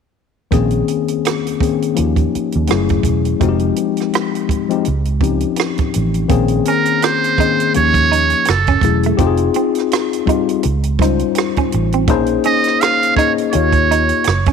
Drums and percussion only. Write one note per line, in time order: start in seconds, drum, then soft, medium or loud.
0.52 kick medium
0.52 closed hi-hat medium
0.70 closed hi-hat soft
0.88 closed hi-hat medium
1.08 closed hi-hat soft
1.25 cross-stick medium
1.25 closed hi-hat medium
1.47 closed hi-hat soft
1.61 kick medium
1.61 closed hi-hat soft
1.82 closed hi-hat soft
1.96 closed hi-hat medium
2.16 kick medium
2.16 closed hi-hat soft
2.35 closed hi-hat soft
2.52 closed hi-hat soft
2.67 cross-stick medium
2.67 closed hi-hat medium
2.89 kick medium
2.89 closed hi-hat soft
3.03 kick medium
3.03 closed hi-hat medium
3.25 closed hi-hat soft
3.41 kick medium
3.41 closed hi-hat medium
3.59 closed hi-hat soft
3.76 closed hi-hat medium
3.97 cross-stick soft
3.97 closed hi-hat soft
4.13 cross-stick medium
4.13 closed hi-hat medium
4.35 closed hi-hat soft
4.49 kick medium
4.49 closed hi-hat medium
4.70 closed hi-hat soft
4.85 closed hi-hat medium
5.05 closed hi-hat soft
5.21 kick medium
5.21 closed hi-hat soft
5.40 closed hi-hat soft
5.56 cross-stick medium
5.56 closed hi-hat medium
5.78 kick medium
5.78 closed hi-hat soft
5.94 closed hi-hat medium
6.14 closed hi-hat soft
6.29 kick loud
6.29 closed hi-hat medium
6.48 closed hi-hat soft
6.65 closed hi-hat medium
6.85 closed hi-hat soft
7.02 cross-stick loud
7.02 closed hi-hat medium
7.24 closed hi-hat soft
7.38 kick medium
7.38 closed hi-hat medium
7.60 closed hi-hat soft
7.74 closed hi-hat medium
7.94 kick medium
7.94 closed hi-hat soft
8.13 closed hi-hat medium
8.30 closed hi-hat soft
8.45 cross-stick medium
8.45 closed hi-hat medium
8.67 kick medium
8.67 closed hi-hat soft
8.81 kick medium
8.81 closed hi-hat medium
9.03 closed hi-hat soft
9.18 kick loud
9.18 closed hi-hat medium
9.37 closed hi-hat soft
9.54 closed hi-hat medium
9.75 cross-stick soft
9.75 closed hi-hat soft
9.92 cross-stick loud
9.92 closed hi-hat medium
10.13 closed hi-hat soft
10.27 kick medium
10.27 closed hi-hat medium
10.49 closed hi-hat soft
10.63 closed hi-hat medium
10.83 closed hi-hat soft
10.99 kick medium
10.99 cross-stick soft
10.99 closed hi-hat medium
11.19 closed hi-hat soft
11.35 cross-stick medium
11.35 closed hi-hat medium
11.56 kick medium
11.56 closed hi-hat soft
11.72 closed hi-hat medium
11.92 closed hi-hat soft
12.08 kick loud
12.08 closed hi-hat medium
12.26 closed hi-hat soft
12.44 closed hi-hat medium
12.64 cross-stick soft
12.64 closed hi-hat soft
12.81 cross-stick loud
12.81 closed hi-hat medium
13.03 closed hi-hat soft
13.17 kick medium
13.17 closed hi-hat medium
13.38 closed hi-hat soft
13.53 closed hi-hat medium
13.73 kick medium
13.73 closed hi-hat soft
13.91 cross-stick soft
13.91 closed hi-hat medium
14.09 closed hi-hat soft
14.24 cross-stick medium
14.24 closed hi-hat medium
14.46 kick medium
14.46 closed hi-hat soft